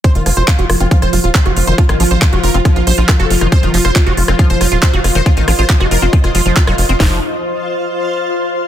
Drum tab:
HH |xxoxxxoxxxoxxxox|xxoxxxoxxxoxxxox|xxoxxxoxxxoxxxox|xxoxxxoxxxoxxxox|
CP |----x-------x---|----x-------x---|----x-------x---|----x-------x---|
SD |--r---r--r---r--|-r--r---r---r--r|---r---r--r---r-|--r--r---r---r--|
BD |o---o---o---o---|o---o---o---o---|o---o---o---o---|o---o---o---o---|

HH |o---------------|
CP |----------------|
SD |o---------------|
BD |o---------------|